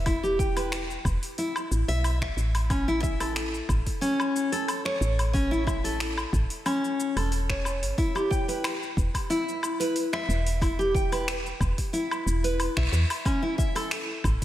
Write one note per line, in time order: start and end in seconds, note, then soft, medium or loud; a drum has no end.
0.00 0.98 E1 medium
0.06 0.22 E4 medium
0.06 kick loud
0.06 open hi-hat soft
0.06 low woodblock medium
0.06 shaker soft
0.23 0.38 G4 medium
0.23 shaker soft
0.39 0.55 G5 medium
0.39 kick loud
0.39 shaker medium
0.57 0.71 B4 medium
0.57 open hi-hat medium
0.57 low woodblock medium
0.57 shaker soft
0.72 finger snap medium
0.72 open hi-hat soft
0.72 shaker soft
0.91 shaker soft
1.05 1.17 E1 loud
1.05 kick loud
1.05 low woodblock medium
1.05 shaker medium
1.23 open hi-hat medium
1.23 shaker soft
1.38 1.54 E4 medium
1.38 open hi-hat soft
1.38 shaker soft
1.56 low woodblock medium
1.56 shaker soft
1.71 1.84 A1 medium
1.71 shaker medium
1.88 2.30 B1 medium
1.88 2.02 E5 medium
1.88 open hi-hat medium
1.88 shaker soft
2.04 open hi-hat soft
2.04 low woodblock medium
2.04 shaker soft
2.22 2.36 E5 medium
2.22 finger snap medium
2.22 kick medium
2.37 3.62 A1 medium
2.37 shaker medium
2.55 open hi-hat soft
2.55 low woodblock medium
2.55 shaker soft
2.70 2.86 C#4 medium
2.70 kick loud
2.70 open hi-hat soft
2.70 low woodblock medium
2.70 shaker soft
2.88 3.02 E4 medium
2.88 shaker soft
3.03 3.19 E5 medium
3.03 kick loud
3.03 shaker medium
3.20 3.35 A4 medium
3.20 open hi-hat medium
3.20 low woodblock medium
3.20 shaker soft
3.36 finger snap medium
3.36 open hi-hat soft
3.36 shaker soft
3.54 shaker soft
3.69 3.81 A1 medium
3.69 kick loud
3.69 low woodblock medium
3.69 shaker medium
3.86 kick medium
3.86 open hi-hat soft
3.86 shaker soft
4.01 4.50 C#4 medium
4.01 open hi-hat soft
4.01 shaker soft
4.20 low woodblock medium
4.20 shaker soft
4.36 shaker medium
4.52 4.67 A4 medium
4.52 open hi-hat soft
4.52 shaker soft
4.68 open hi-hat soft
4.68 low woodblock medium
4.68 shaker soft
4.85 5.32 C#5 medium
4.85 finger snap medium
5.01 6.25 A1 loud
5.01 shaker medium
5.19 open hi-hat soft
5.19 low woodblock medium
5.19 shaker soft
5.33 5.49 C#4 medium
5.33 kick loud
5.33 open hi-hat soft
5.33 shaker soft
5.51 5.66 E4 medium
5.51 shaker soft
5.67 5.82 E5 medium
5.67 kick loud
5.67 low woodblock medium
5.67 shaker medium
5.84 5.99 A4 medium
5.84 open hi-hat medium
5.84 shaker soft
6.00 finger snap medium
6.00 open hi-hat soft
6.00 shaker soft
6.18 low woodblock medium
6.18 shaker soft
6.33 6.45 A1 loud
6.33 kick loud
6.33 shaker medium
6.50 open hi-hat medium
6.50 shaker soft
6.66 7.14 C#4 medium
6.66 open hi-hat soft
6.66 low woodblock medium
6.66 shaker soft
6.84 shaker soft
7.00 shaker medium
7.16 7.84 E1 medium
7.16 7.31 A4 medium
7.16 open hi-hat medium
7.16 low woodblock medium
7.16 shaker soft
7.32 open hi-hat soft
7.32 shaker soft
7.49 7.96 C#5 medium
7.49 finger snap medium
7.49 kick medium
7.65 low woodblock medium
7.65 shaker medium
7.83 7.93 G1 loud
7.83 open hi-hat medium
7.83 shaker soft
7.98 8.13 E4 medium
7.98 kick loud
7.98 open hi-hat soft
7.98 shaker soft
8.15 8.30 G4 medium
8.15 low woodblock medium
8.15 shaker soft
8.31 8.46 G5 medium
8.31 kick loud
8.31 shaker medium
8.48 8.63 B4 medium
8.48 open hi-hat medium
8.48 shaker soft
8.64 finger snap medium
8.64 open hi-hat soft
8.64 low woodblock medium
8.64 shaker soft
8.83 shaker soft
8.97 9.09 E1 loud
8.97 kick loud
8.97 shaker medium
9.14 kick medium
9.14 open hi-hat medium
9.14 low woodblock medium
9.14 shaker soft
9.30 9.78 E4 medium
9.30 open hi-hat soft
9.30 shaker soft
9.49 shaker soft
9.63 low woodblock medium
9.63 shaker medium
9.80 9.95 B4 medium
9.80 open hi-hat medium
9.80 shaker soft
9.96 open hi-hat soft
9.96 shaker soft
10.13 10.60 E5 medium
10.13 finger snap medium
10.13 low woodblock medium
10.29 11.53 E1 medium
10.29 shaker medium
10.47 open hi-hat medium
10.47 shaker soft
10.61 10.77 E4 medium
10.61 kick loud
10.61 open hi-hat soft
10.61 low woodblock medium
10.61 shaker soft
10.79 10.94 G4 medium
10.79 shaker soft
10.95 11.10 G5 medium
10.95 kick loud
10.95 shaker medium
11.12 11.27 B4 medium
11.12 open hi-hat medium
11.12 low woodblock medium
11.12 shaker soft
11.28 finger snap medium
11.28 open hi-hat soft
11.28 shaker soft
11.46 shaker soft
11.60 11.73 E1 loud
11.60 kick loud
11.60 low woodblock medium
11.60 shaker medium
11.78 kick medium
11.78 open hi-hat medium
11.78 shaker soft
11.93 12.42 E4 medium
11.93 open hi-hat soft
11.93 shaker soft
12.11 low woodblock medium
12.11 shaker soft
12.26 12.68 E1 medium
12.26 shaker medium
12.44 12.59 B4 medium
12.44 open hi-hat medium
12.44 shaker soft
12.60 open hi-hat soft
12.60 low woodblock medium
12.60 shaker soft
12.77 12.88 B1 medium
12.77 13.24 E5 medium
12.77 finger snap medium
12.77 kick medium
12.92 13.05 E2 medium
12.92 shaker medium
13.10 open hi-hat medium
13.10 low woodblock medium
13.10 shaker soft
13.25 13.41 C#4 medium
13.25 kick loud
13.25 open hi-hat soft
13.25 low woodblock medium
13.25 shaker soft
13.43 13.57 E4 medium
13.58 13.74 E5 medium
13.58 kick loud
13.58 shaker medium
13.75 13.90 A4 medium
13.75 open hi-hat medium
13.75 low woodblock medium
13.75 shaker soft
13.91 finger snap medium
13.91 open hi-hat soft
13.91 shaker soft
14.24 14.36 A1 loud
14.24 kick loud
14.24 low woodblock medium
14.24 shaker medium